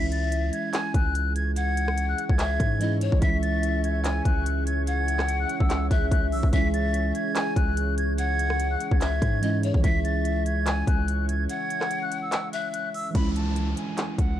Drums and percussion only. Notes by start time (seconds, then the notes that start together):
0.12 closed hi-hat
0.32 closed hi-hat
0.53 closed hi-hat
0.73 clap, closed hi-hat
0.94 kick, closed hi-hat
1.15 closed hi-hat
1.36 closed hi-hat
1.56 closed hi-hat
1.77 closed hi-hat
1.88 cross-stick
1.98 closed hi-hat
2.18 closed hi-hat
2.29 kick
2.39 clap, closed hi-hat
2.60 kick, cross-stick, closed hi-hat
2.81 closed hi-hat
3.01 closed hi-hat
3.12 kick
3.22 kick, closed hi-hat
3.43 closed hi-hat
3.63 closed hi-hat
3.84 closed hi-hat
4.04 clap, closed hi-hat
4.25 kick, closed hi-hat
4.46 closed hi-hat
4.67 closed hi-hat
4.87 closed hi-hat
5.08 closed hi-hat
5.19 cross-stick, clap
5.29 closed hi-hat
5.49 closed hi-hat
5.60 kick
5.70 clap, closed hi-hat
5.91 kick, closed hi-hat
6.11 kick, closed hi-hat
6.32 open hi-hat
6.43 kick
6.53 kick, closed hi-hat
6.74 closed hi-hat
6.94 closed hi-hat
7.15 closed hi-hat
7.35 clap, closed hi-hat
7.56 kick, closed hi-hat
7.77 closed hi-hat
7.98 closed hi-hat
8.18 closed hi-hat
8.39 closed hi-hat
8.50 cross-stick
8.60 closed hi-hat
8.80 closed hi-hat
8.91 kick
9.01 clap, closed hi-hat
9.22 kick, cross-stick, closed hi-hat
9.43 closed hi-hat
9.63 closed hi-hat
9.74 kick
9.84 kick, closed hi-hat
10.05 closed hi-hat
10.25 closed hi-hat
10.46 closed hi-hat
10.66 clap, closed hi-hat
10.87 kick, closed hi-hat
11.08 closed hi-hat
11.29 closed hi-hat
11.49 closed hi-hat
11.70 closed hi-hat
11.81 cross-stick, clap
11.91 closed hi-hat
12.12 closed hi-hat
12.32 clap, closed hi-hat
12.53 closed hi-hat
12.74 closed hi-hat
12.94 open hi-hat
13.15 kick, closed hi-hat
13.36 closed hi-hat
13.56 closed hi-hat
13.77 closed hi-hat
13.98 clap, closed hi-hat
14.18 kick, closed hi-hat